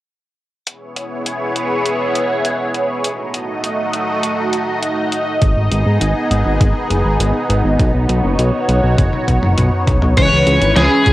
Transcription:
0.66 B3 E4 G#4 C#5, closed hi-hat
0.96 closed hi-hat
1.26 closed hi-hat
1.56 closed hi-hat
1.86 closed hi-hat
2.15 closed hi-hat
2.45 closed hi-hat
2.74 closed hi-hat
3.04 A3 D#4 F#4 D#5, closed hi-hat
3.34 closed hi-hat
3.64 closed hi-hat
3.93 closed hi-hat
4.23 closed hi-hat
4.53 closed hi-hat
4.83 closed hi-hat
5.12 closed hi-hat
5.42 G#1 B3 G#4, kick, closed hi-hat
5.57 G#1
5.72 G#1, closed hi-hat
5.86 G#2
6.01 G#1, closed hi-hat
6.31 G#1, closed hi-hat
6.46 G#1
6.61 G#1, kick, closed hi-hat
6.90 F#1, closed hi-hat
7.05 G#1
7.20 G#1, closed hi-hat
7.49 G#1, closed hi-hat
7.64 G#1
7.79 B1 F#4 C#5, kick, closed hi-hat
7.94 B1
8.09 B1, closed hi-hat
8.24 F#1
8.39 B1, closed hi-hat
8.68 B1, closed hi-hat
8.83 B1
8.98 F#1, kick, closed hi-hat, high tom
9.13 high tom
9.28 B1, kick, closed hi-hat, high tom
9.43 F#1, mid tom
9.58 B1, closed hi-hat, mid tom
9.87 B1, kick, closed hi-hat, mid tom
10.02 B1, mid tom
10.17 C#2 E3 G#3 C#4 E4 B4 C#5, kick, closed hi-hat, crash
10.32 C#2
10.47 C#2, closed hi-hat
10.61 G#1, closed hi-hat
10.76 C#2 G#4, snare, closed hi-hat
11.06 C#2, kick, closed hi-hat

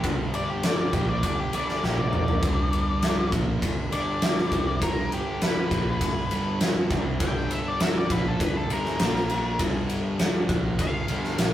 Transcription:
0.04 G1 G2 D3 G3, kick, ride
0.34 D5, ride
0.50 G4
0.63 D5, snare, ride
0.78 D5
0.93 A#1 A#2 F3 A#3 G4, kick, ride
1.09 D5
1.23 G1 G2 D3 D5, kick, ride
1.40 G4
1.53 G1 G2 D3 G3 D5, ride
1.69 D5, snare
1.83 A#1 A#2 F3 A#3 G4, snare
1.98 D5, high tom
2.13 D5, mid tom
2.28 floor tom
2.42 G1 G2 D3 G3, kick, ride
2.73 ride
3.03 snare, ride
3.32 A#1 A#2 F3 A#3, kick, ride
3.62 G1 G2 D3, kick, ride
3.92 G1 G2 D3 G3 D5, ride
4.22 snare, ride
4.38 snare
4.52 C2 C3 G3 C4, kick, ride
4.81 G1 G2 D3 G3 A#4, kick, ride
5.12 G4, ride
5.42 B4, snare, ride
5.71 A#1 A#2 F3 A#3, kick, ride
6.01 G1 G2 D3, kick, ride
6.31 G1 G2 D3 G3, ride
6.61 snare, ride
6.91 C2 C3 G3 C4, kick, ride
7.20 G1 G2 D3 G3 G5, kick, ride
7.51 E5, ride
7.68 D5
7.80 E5, snare, ride
7.98 D5
8.10 A#1 A#2 F3 A#3 B4, kick, ride
8.28 A4
8.40 G1 G2 D3 B4, kick, ride
8.57 A4
8.70 G1 G2 D3 G3 A#4, ride
8.85 snare
9.00 A#1 A#2 F3 A#3, snare, ride
9.15 snare
9.30 ride
9.59 G1 G2 D3 G3, kick, ride
9.90 ride
10.19 snare, ride
10.49 A#1 A#2 F3 A#3, kick, ride
10.79 G1 G2 D3 F5, kick, ride
11.08 G1 G2 D3 G3, ride
11.24 snare
11.38 A#1 A#2 F3 A#3, snare, ride

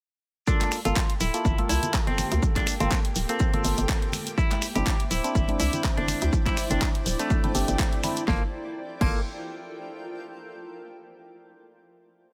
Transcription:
0.47 A#3 D4 F4 G4 A4 G5, kick, shekere, shaker
0.61 clap, closed hi-hat, high conga
0.71 finger snap, open hi-hat, high bongo, shekere, shaker
0.83 G1 A#3 F4 A4, closed hi-hat, high conga, shekere
0.96 kick, snare, clap, shekere, shaker
1.08 G5, closed hi-hat
1.20 D1 E4, open hi-hat, shaker, shekere
1.34 A#3 F4 A4, closed hi-hat, shekere
1.45 G1, kick, shekere, shaker
1.58 A#3 F4 A4, closed hi-hat, high conga
1.69 C2 E4, open hi-hat, shaker, shekere
1.83 closed hi-hat, high bongo, low conga, shekere
1.94 kick, snare, clap, shaker, shekere
2.07 G1 C4, closed hi-hat
2.18 finger snap, open hi-hat, high conga, low conga, shekere, shaker
2.32 D2, closed hi-hat, shekere
2.43 kick, shaker, shekere
2.56 D4, kick, clap, closed hi-hat, high conga
2.66 finger snap, open hi-hat, high bongo, shaker, shekere
2.80 G1 A#3 C4 F4 A4, closed hi-hat, high conga, low conga, shekere
2.91 kick, snare, clap, shaker, shekere
3.05 closed hi-hat
3.15 D1, open hi-hat, high bongo, shekere, shaker
3.29 A#3 C4 F4 A4, closed hi-hat, shekere
3.39 kick, shaker, shekere
3.53 A#3 F4 A4, closed hi-hat, high conga, low conga
3.64 G1, open hi-hat, shekere, shaker
3.77 G1, closed hi-hat, shekere
3.89 kick, snare, clap, shaker, shekere
4.02 closed hi-hat
4.12 finger snap, open hi-hat, high conga, low conga, shekere, shaker
4.27 closed hi-hat, shekere
4.38 E4 C5 E5 D6, kick, shekere, shaker
4.46 C5
4.51 clap, closed hi-hat, high conga
4.62 D5, finger snap, open hi-hat, high bongo, shaker, shekere
4.75 G1 C4 D4 E4 G4, closed hi-hat, high conga, shekere
4.86 kick, snare, clap, shaker, shekere
5.00 closed hi-hat
5.11 D1 E4, open hi-hat, shaker, shekere
5.24 C4 D4 E4, closed hi-hat, shekere
5.35 G1, kick, shaker, shekere
5.48 C4 D4 E4, closed hi-hat, high conga
5.60 C2 E4, open hi-hat, shekere, shaker
5.73 closed hi-hat, high bongo, low conga, shekere
5.84 kick, snare, clap, shekere, shaker
5.97 G1 D4, closed hi-hat
6.08 finger snap, open hi-hat, high conga, low conga, shaker, shekere
6.21 D2, closed hi-hat, shekere
6.33 kick, shaker, shekere
6.46 E4, kick, clap, closed hi-hat, high conga
6.57 finger snap, open hi-hat, high bongo, shaker, shekere
6.70 G1 C4 D4 E4, closed hi-hat, high conga, low conga, shekere
6.81 kick, snare, clap, shekere, shaker
6.95 closed hi-hat
7.06 D1, open hi-hat, high bongo, shaker, shekere
7.19 A3 C4 D4 E4, closed hi-hat, shekere
7.30 kick, shekere, shaker
7.44 C4 D4 E4, closed hi-hat, high conga, low conga
7.55 G1 C4 D4 G4, open hi-hat, shekere, shaker
7.68 G1, closed hi-hat, shekere
7.79 kick, snare, clap, shekere, shaker
7.93 closed hi-hat
8.03 C4 D4 E4, finger snap, open hi-hat, high conga, low conga, shekere, shaker
8.17 closed hi-hat, shekere
8.28 G1 A#3 F4 A4, kick, snare
8.36 A4
8.44 A#4
8.50 G5
9.01 G1 A#3 F4 A4, kick, crash

